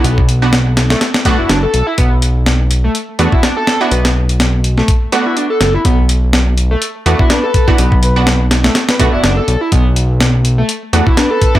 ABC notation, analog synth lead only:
X:1
M:4/4
L:1/16
Q:"Swing 16ths" 1/4=124
K:Bm
V:1 name="Analog synth lead"
B, z6 A, z2 A, E D A2 E | B, z6 A, z2 A, E D A2 E | B, z6 A, z2 A, E D A2 E | B, z6 A, z2 A, E D A2 E |
B, z6 A, z2 A, E D A2 E | B, z6 A, z2 A, E D A2 E |]